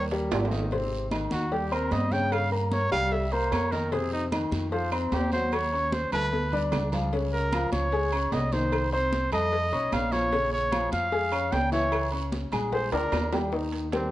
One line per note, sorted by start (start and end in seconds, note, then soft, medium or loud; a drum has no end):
0.00 0.28 D#2 loud
0.12 0.45 G3 medium
0.12 0.45 G4 medium
0.12 0.45 A#4 medium
0.12 high conga soft
0.12 high timbale medium
0.31 1.26 G#1 loud
0.31 high bongo soft
0.31 low bongo medium
0.31 high conga medium
0.31 high timbale loud
0.31 short guiro medium
0.31 claves medium
0.45 low timbale loud
0.51 0.68 D#3 medium
0.51 0.68 D#4 medium
0.51 0.68 D#5 medium
0.51 high bongo soft
0.51 high conga medium
0.51 short guiro medium
0.59 low timbale medium
0.71 1.05 C3 medium
0.71 1.05 C4 medium
0.71 1.05 C5 medium
0.71 cowbell loud
0.71 high conga soft
0.71 low agogo medium
0.71 long guiro medium
0.92 high conga soft
1.11 1.44 D#3 medium
1.11 1.45 D#4 medium
1.11 1.45 D#5 medium
1.11 cowbell medium
1.11 high conga medium
1.11 low timbale medium
1.11 low agogo loud
1.11 short guiro medium
1.11 claves medium
1.31 1.88 D#2 loud
1.31 1.54 F#4 medium
1.31 high conga medium
1.31 low agogo medium
1.31 short guiro medium
1.52 1.68 G3 medium
1.52 1.68 G4 medium
1.52 1.74 G4 medium
1.52 1.69 G5 medium
1.52 cowbell loud
1.52 high conga soft
1.52 long guiro medium
1.72 2.05 C4 medium
1.72 1.94 A#4 medium
1.72 2.05 C5 medium
1.72 2.05 C6 medium
1.72 high conga soft
1.72 low agogo loud
1.72 claves medium
1.91 2.86 G2 loud
1.91 2.14 D#5 medium
1.91 cowbell medium
1.91 high conga medium
1.91 low timbale medium
1.91 low agogo loud
1.91 short guiro medium
2.12 2.45 C#3 medium
2.12 2.45 C#4 medium
2.12 2.45 C#5 medium
2.12 2.34 G5 loud
2.12 cowbell medium
2.12 high conga medium
2.12 short guiro medium
2.32 2.52 F5 loud
2.32 cowbell loud
2.32 high conga soft
2.32 low agogo loud
2.32 long guiro medium
2.32 claves medium
2.52 2.85 A#3 medium
2.52 2.85 A#4 medium
2.52 2.68 A#4 medium
2.52 2.85 A#5 medium
2.52 high conga soft
2.52 low agogo medium
2.72 2.92 C#5 medium
2.72 cowbell medium
2.72 high conga loud
2.72 low timbale medium
2.72 short guiro medium
2.92 3.48 C2 medium
2.92 3.25 G3 medium
2.92 3.25 G4 medium
2.92 3.14 F5 loud
2.92 3.25 G5 medium
2.92 cowbell medium
2.92 high conga soft
2.92 low conga medium
2.92 low agogo loud
2.92 short guiro medium
2.92 claves medium
3.12 3.34 E5 medium
3.12 cowbell loud
3.12 high conga soft
3.12 long guiro medium
3.32 3.66 A#3 medium
3.32 3.66 A#4 medium
3.32 3.53 C5 medium
3.32 3.66 A#5 medium
3.32 high conga soft
3.32 low agogo medium
3.52 4.46 F2 loud
3.52 3.73 C#5 medium
3.52 cowbell medium
3.52 high conga medium
3.52 low timbale medium
3.52 low agogo loud
3.52 short guiro medium
3.52 claves medium
3.72 3.89 D#3 medium
3.72 3.89 D#4 medium
3.72 3.94 A#4 medium
3.72 3.89 D#5 medium
3.72 cowbell medium
3.72 high conga medium
3.72 low agogo medium
3.72 short guiro medium
3.92 4.25 C3 medium
3.92 4.25 C4 medium
3.92 4.12 G#4 medium
3.92 4.26 C5 medium
3.92 cowbell loud
3.92 high conga soft
3.92 low agogo medium
3.92 long guiro medium
4.13 4.25 D#4 medium
4.13 high conga soft
4.32 4.65 D#3 medium
4.32 4.66 D#4 medium
4.32 4.66 D#5 medium
4.32 cowbell medium
4.32 high conga loud
4.32 low timbale medium
4.32 low agogo loud
4.32 short guiro medium
4.32 claves medium
4.52 5.08 F2 loud
4.52 high conga medium
4.52 low agogo medium
4.52 short guiro medium
4.72 4.89 F3 medium
4.72 4.89 F4 medium
4.72 4.91 C5 medium
4.72 4.89 F5 medium
4.72 cowbell loud
4.72 high conga soft
4.72 long guiro medium
4.92 5.25 C4 medium
4.92 5.08 D#4 soft
4.92 5.25 C5 medium
4.92 5.26 C6 medium
4.92 high conga soft
4.92 low agogo loud
4.92 claves medium
5.12 6.06 D#2 loud
5.12 5.32 G4 medium
5.12 cowbell medium
5.12 high conga medium
5.12 low timbale loud
5.12 low agogo loud
5.12 short guiro medium
5.32 5.66 F#3 medium
5.32 5.66 F#4 medium
5.32 5.55 C5 loud
5.32 5.66 F#5 medium
5.32 cowbell medium
5.32 high conga medium
5.32 short guiro medium
5.52 5.95 C#5 loud
5.52 cowbell loud
5.52 high conga soft
5.52 low agogo loud
5.52 long guiro medium
5.52 claves medium
5.72 6.06 C#4 medium
5.72 6.06 C#5 medium
5.72 6.06 C#6 medium
5.72 high conga soft
5.72 low agogo medium
5.92 6.12 C5 medium
5.92 cowbell medium
5.92 high conga loud
5.92 low timbale medium
5.92 short guiro medium
6.12 6.69 D2 medium
6.12 6.46 A3 medium
6.12 6.46 A4 medium
6.12 6.69 B4 loud
6.12 6.46 A5 medium
6.12 cowbell medium
6.12 high conga soft
6.12 low conga medium
6.12 low agogo loud
6.12 short guiro medium
6.12 claves medium
6.32 cowbell loud
6.32 high conga medium
6.32 long guiro medium
6.52 6.86 D4 medium
6.52 6.86 D5 medium
6.52 6.86 D6 medium
6.52 low conga medium
6.52 low agogo medium
6.72 7.67 C#2 loud
6.72 cowbell medium
6.72 low conga medium
6.72 low timbale loud
6.72 low agogo loud
6.72 short guiro medium
6.72 claves medium
6.92 7.09 F3 medium
6.92 7.09 F4 medium
6.92 7.10 F5 medium
6.92 cowbell medium
6.92 low conga loud
6.92 low agogo medium
6.92 short guiro medium
7.13 7.46 C#3 medium
7.13 7.46 C#4 medium
7.13 7.46 C#5 medium
7.13 cowbell loud
7.13 high conga soft
7.13 low agogo medium
7.13 long guiro medium
7.33 7.70 A#4 loud
7.33 high conga soft
7.52 7.86 F3 medium
7.52 7.86 F4 medium
7.52 7.86 F5 medium
7.52 cowbell medium
7.52 high conga medium
7.52 low timbale medium
7.52 low agogo loud
7.52 short guiro medium
7.52 claves medium
7.72 8.29 C#2 medium
7.72 8.34 C#5 medium
7.72 high conga medium
7.72 low agogo medium
7.72 short guiro medium
7.92 8.09 G#3 medium
7.92 8.10 G#4 medium
7.92 8.10 G#5 medium
7.92 cowbell loud
7.92 high conga soft
7.92 long guiro medium
8.13 8.46 C#4 medium
8.13 8.46 C#5 medium
8.13 8.46 C#6 medium
8.13 high conga soft
8.13 low agogo loud
8.13 claves medium
8.32 9.26 C2 loud
8.32 8.54 D#5 medium
8.32 cowbell medium
8.32 high conga medium
8.32 low timbale loud
8.32 low agogo medium
8.32 short guiro medium
8.52 8.86 D#3 medium
8.52 8.86 D#4 medium
8.52 8.92 C5 loud
8.52 8.86 D#5 medium
8.52 cowbell medium
8.52 high conga medium
8.52 short guiro medium
8.72 cowbell loud
8.72 high conga soft
8.72 low agogo loud
8.72 long guiro medium
8.72 claves medium
8.93 9.26 C4 medium
8.93 9.30 C5 loud
8.93 9.26 C5 medium
8.93 9.26 C6 medium
8.93 high conga soft
8.93 low agogo medium
9.12 cowbell medium
9.12 high conga medium
9.12 low timbale medium
9.12 short guiro medium
9.32 9.70 F2 medium
9.32 9.65 A3 medium
9.32 9.66 A4 medium
9.32 9.94 D#5 loud
9.32 9.66 A5 medium
9.32 cowbell medium
9.32 high conga soft
9.32 low conga medium
9.32 low agogo loud
9.32 short guiro medium
9.32 claves medium
9.52 cowbell loud
9.52 high conga soft
9.52 long guiro medium
9.72 9.91 B1 medium
9.72 10.05 C#4 medium
9.72 10.05 C#5 medium
9.72 10.05 C#6 medium
9.72 high conga soft
9.72 low agogo loud
9.92 10.87 A#1 loud
9.92 10.13 F5 loud
9.92 cowbell medium
9.92 high conga medium
9.92 low timbale medium
9.92 low agogo loud
9.92 short guiro medium
9.92 claves medium
10.12 10.29 F3 medium
10.12 10.29 F4 medium
10.12 10.52 C#5 loud
10.12 10.29 F5 medium
10.12 cowbell medium
10.12 high conga medium
10.12 low agogo medium
10.12 short guiro medium
10.32 10.65 C#3 medium
10.32 10.66 C#4 medium
10.32 10.66 C#5 medium
10.32 cowbell loud
10.32 high conga soft
10.32 low agogo medium
10.32 long guiro medium
10.52 10.90 C#5 loud
10.52 high conga soft
10.72 11.05 F3 medium
10.72 11.05 F4 medium
10.72 11.05 F5 medium
10.72 cowbell medium
10.72 high conga loud
10.72 low timbale medium
10.72 low agogo loud
10.72 short guiro medium
10.72 claves medium
10.92 11.48 F2 loud
10.92 11.54 F5 loud
10.92 high conga medium
10.92 low agogo medium
10.92 short guiro medium
11.12 11.29 G#3 medium
11.12 11.29 G#4 medium
11.12 11.29 G#5 medium
11.12 cowbell loud
11.12 high conga soft
11.12 long guiro medium
11.32 11.65 C#4 medium
11.32 11.65 C#5 medium
11.32 11.65 C#6 medium
11.32 high conga soft
11.32 low agogo loud
11.32 claves medium
11.52 12.46 C#2 loud
11.52 11.71 G5 loud
11.52 cowbell medium
11.52 high conga medium
11.52 low timbale loud
11.52 low agogo medium
11.52 short guiro medium
11.72 12.05 E3 medium
11.72 12.05 E4 medium
11.72 12.10 C#5 loud
11.72 12.05 E5 medium
11.72 cowbell medium
11.72 high conga medium
11.72 short guiro medium
11.92 cowbell loud
11.92 high conga soft
11.92 low agogo loud
11.92 long guiro medium
11.92 claves medium
12.12 12.45 C#4 medium
12.12 12.45 C#5 medium
12.12 12.45 C#6 medium
12.12 high conga soft
12.12 low agogo medium
12.32 cowbell medium
12.32 high conga loud
12.32 low timbale medium
12.32 short guiro medium
12.52 12.89 A#1 loud
12.52 12.85 G#3 medium
12.52 12.86 G#4 medium
12.52 12.86 G#5 medium
12.52 cowbell medium
12.52 high conga soft
12.52 low conga medium
12.52 low agogo loud
12.52 short guiro medium
12.52 claves medium
12.72 12.92 C5 medium
12.72 cowbell loud
12.72 high bongo medium
12.72 high conga soft
12.72 low conga medium
12.72 long guiro medium
12.92 13.11 D2 medium
12.92 13.26 D4 medium
12.92 13.39 A#4 medium
12.92 13.26 D5 medium
12.92 13.26 D6 medium
12.92 high bongo loud
12.92 high timbale loud
12.92 low agogo medium
13.12 14.07 D#2 loud
13.12 cowbell medium
13.12 low bongo loud
13.12 high conga medium
13.12 low timbale loud
13.12 low agogo loud
13.12 short guiro medium
13.12 claves medium
13.33 13.49 G3 medium
13.33 13.49 G4 medium
13.33 13.50 G5 medium
13.33 cowbell medium
13.33 low bongo medium
13.33 low timbale medium
13.33 low agogo loud
13.33 short guiro medium
13.52 13.85 D#3 medium
13.52 13.86 D#4 medium
13.52 13.86 D#5 medium
13.52 high bongo medium
13.52 high conga soft
13.52 long guiro medium
13.72 high conga soft
13.72 high timbale medium
13.92 14.09 G3 medium
13.92 14.11 C4 medium
13.92 14.09 G4 medium
13.92 14.10 A#4 medium
13.92 high bongo medium
13.92 high conga medium
13.92 high timbale medium
13.92 short guiro medium
13.92 claves medium